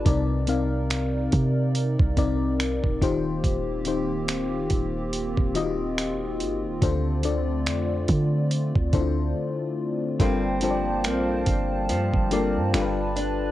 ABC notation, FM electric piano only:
X:1
M:4/4
L:1/8
Q:"Swing 16ths" 1/4=71
K:Gm
V:1 name="FM electric piano"
[C,CEBd] [C,CEBf]3 z [C,CEBd]2 [E,EFGc]- | [E,EFGc] [E,EFGc]3 z [E,EF^FGe]2 z | [D,DFAc] [D,DFAd]3 z [D,D=EFAc]2 z | [G,DFABc] [G,DFABcd]3 z [G,DFABd] [G,DFAB=B]2 |]